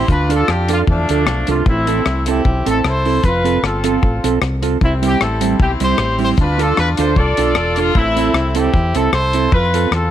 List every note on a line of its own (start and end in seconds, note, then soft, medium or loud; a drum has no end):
0.08 0.42 D2 loud
0.08 0.84 D4 medium
0.08 0.70 F4 medium
0.08 0.29 B4 medium
0.08 kick loud
0.08 hi-hat pedal medium
0.29 0.44 D4 medium
0.29 0.44 F4 medium
0.29 0.45 A4 medium
0.29 0.49 A4 medium
0.29 closed hi-hat medium
0.48 0.81 F2 medium
0.48 0.70 G4 medium
0.48 cross-stick loud
0.68 0.83 D4 medium
0.68 0.84 F4 loud
0.68 0.79 F4 medium
0.68 0.84 A4 loud
0.68 closed hi-hat loud
0.87 1.05 E2 medium
0.87 1.63 F3 medium
0.87 1.63 A3 medium
0.87 1.45 D4 medium
0.87 kick loud
1.09 1.24 D2 medium
1.09 1.23 D4 medium
1.09 1.24 F4 medium
1.09 1.24 A4 loud
1.09 closed hi-hat loud
1.26 1.44 B1 medium
1.26 muted clean electric guitar stroke medium
1.26 cross-stick loud
1.47 1.63 C2 loud
1.47 1.62 D4 medium
1.47 1.63 F4 loud
1.47 1.67 F4 medium
1.47 1.63 A4 medium
1.47 closed hi-hat medium
1.66 1.99 A1 loud
1.66 2.42 A3 medium
1.66 2.28 C4 medium
1.66 2.24 E4 medium
1.66 kick loud
1.87 2.01 C4 medium
1.87 2.02 E4 medium
1.87 2.02 A4 loud
1.87 closed hi-hat medium
2.06 2.39 C2 medium
2.06 cross-stick loud
2.26 2.41 C4 medium
2.26 3.03 C4 medium
2.26 2.41 E4 medium
2.26 2.85 E4 medium
2.26 2.67 G4 medium
2.26 2.42 A4 medium
2.26 closed hi-hat loud
2.45 2.63 B1 medium
2.45 kick loud
2.66 2.81 A1 medium
2.66 2.80 C4 medium
2.66 2.80 E4 medium
2.66 2.81 A4 medium
2.66 2.84 A4 medium
2.66 closed hi-hat loud
2.84 3.18 C2 medium
2.84 3.22 E4 medium
2.84 3.22 A4 medium
2.84 3.24 C5 loud
2.84 cross-stick loud
3.05 3.20 C4 medium
3.05 3.20 E4 medium
3.05 3.20 A4 medium
3.05 open hi-hat soft
3.23 3.57 F1 loud
3.23 3.63 F4 medium
3.23 3.63 B4 medium
3.23 kick loud
3.23 hi-hat pedal medium
3.44 3.59 C4 medium
3.44 3.59 F4 medium
3.44 3.59 A4 medium
3.44 closed hi-hat medium
3.63 3.96 G1 medium
3.63 4.38 C4 medium
3.63 4.38 F4 medium
3.63 4.35 A4 medium
3.63 cross-stick loud
3.84 3.98 C4 medium
3.84 3.98 F4 medium
3.84 3.98 A4 medium
3.84 closed hi-hat loud
4.03 4.21 A1 medium
4.03 kick loud
4.23 4.39 B1 medium
4.23 4.38 C4 medium
4.23 4.38 F4 medium
4.23 4.38 A4 loud
4.23 closed hi-hat loud
4.41 4.75 C2 loud
4.41 cross-stick loud
4.62 4.77 C4 medium
4.62 4.77 F4 medium
4.62 4.77 A4 medium
4.62 closed hi-hat medium
4.81 5.15 C2 loud
4.81 5.57 G3 medium
4.81 5.19 C4 medium
4.81 4.92 E4 medium
4.81 kick loud
5.02 5.16 G3 medium
5.02 5.16 C4 medium
5.02 5.17 E4 medium
5.02 5.21 G4 loud
5.02 closed hi-hat medium
5.20 5.54 A1 medium
5.20 5.60 C4 medium
5.20 5.60 E4 medium
5.20 5.60 A4 medium
5.20 cross-stick loud
5.41 5.55 G3 medium
5.41 5.56 C4 medium
5.41 5.56 E4 medium
5.41 closed hi-hat loud
5.59 5.77 B1 medium
5.59 6.35 C4 medium
5.59 5.82 E4 medium
5.59 5.70 G4 medium
5.59 kick loud
5.80 5.96 C2 medium
5.80 5.95 G3 medium
5.80 5.95 C4 medium
5.80 5.96 E4 loud
5.80 6.35 E4 medium
5.80 6.36 G4 medium
5.80 closed hi-hat medium
5.84 6.19 C5 loud
5.98 6.32 A1 medium
5.98 cross-stick loud
6.18 6.33 G3 medium
6.18 6.34 C4 medium
6.18 6.34 E4 medium
6.18 6.29 C5 loud
6.18 open hi-hat soft
6.37 6.71 D2 loud
6.37 7.14 D4 medium
6.37 7.14 F4 medium
6.37 6.59 B4 medium
6.37 kick loud
6.37 hi-hat pedal medium
6.58 6.73 D4 medium
6.58 6.73 F4 loud
6.58 6.74 A4 medium
6.58 6.79 A4 loud
6.58 closed hi-hat medium
6.77 6.96 E2 medium
6.77 6.88 B4 loud
6.77 cross-stick loud
6.97 7.14 D2 loud
6.97 7.13 D4 medium
6.97 7.13 F4 medium
6.97 7.13 A4 loud
6.97 7.16 C5 medium
6.97 closed hi-hat loud
7.16 7.35 C2 loud
7.16 7.77 F4 medium
7.16 7.92 A4 medium
7.16 7.78 D5 loud
7.16 kick loud
7.37 7.53 B1 medium
7.37 7.52 D4 medium
7.37 7.52 F4 loud
7.37 7.53 A4 loud
7.37 closed hi-hat loud
7.55 7.89 E1 medium
7.55 muted clean electric guitar stroke soft
7.55 cross-stick loud
7.76 7.91 D4 medium
7.76 7.92 F4 medium
7.76 7.96 F4 loud
7.76 7.92 A4 medium
7.76 closed hi-hat medium
7.95 8.28 A1 loud
7.95 8.71 A3 medium
7.95 8.56 C4 medium
7.95 8.53 E4 medium
7.95 kick loud
8.16 8.31 C4 medium
8.16 8.31 E4 medium
8.16 8.31 A4 medium
8.16 closed hi-hat medium
8.33 8.67 C2 medium
8.33 cross-stick loud
8.55 8.70 C4 medium
8.55 9.31 C4 medium
8.55 8.70 E4 medium
8.55 9.12 E4 medium
8.55 8.95 G4 loud
8.55 8.70 A4 loud
8.55 closed hi-hat loud
8.74 8.92 E2 loud
8.74 kick loud
8.94 9.10 C2 medium
8.94 9.10 C4 medium
8.94 9.10 E4 medium
8.94 9.12 A4 medium
8.94 9.10 A4 medium
8.94 closed hi-hat loud
9.12 9.46 C2 medium
9.12 9.50 E4 medium
9.12 9.50 A4 medium
9.12 9.49 C5 medium
9.12 cross-stick loud
9.33 9.49 C4 medium
9.33 9.49 E4 loud
9.33 9.49 A4 medium
9.33 closed hi-hat medium
9.52 9.86 F2 loud
9.52 9.92 F4 medium
9.52 9.89 B4 loud
9.52 kick loud
9.74 9.88 C4 medium
9.74 9.88 F4 medium
9.74 9.89 A4 medium
9.74 closed hi-hat medium
9.91 10.11 E2 medium
9.91 10.11 C4 medium
9.91 10.11 F4 medium
9.91 10.11 A4 medium
9.91 cross-stick medium